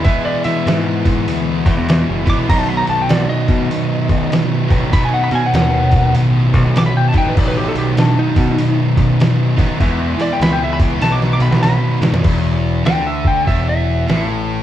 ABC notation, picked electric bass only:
X:1
M:4/4
L:1/16
Q:"Swing" 1/4=98
K:E
V:1 name="Picked electric bass" clef=bass
z2 E, z G,,4 =D,,2 E,, E,,2 F,,, G,,, B,,, | B,,,2 B,,,2 B,,, z B,,2 z2 B,,,2 z2 A,,,2 | z2 B,, z D,,4 A,,,2 B,,, B,,,2 z2 A,,,- | A,,,2 B,,,2 B,,, z B,,2 z2 B,,,2 z2 A,,, z |
E,,2 E, z C,,4 B,,,2 B,,, B,,,2 z G,, F,, | E,,,4 =D,,4 E,,,4 A,,,4 |]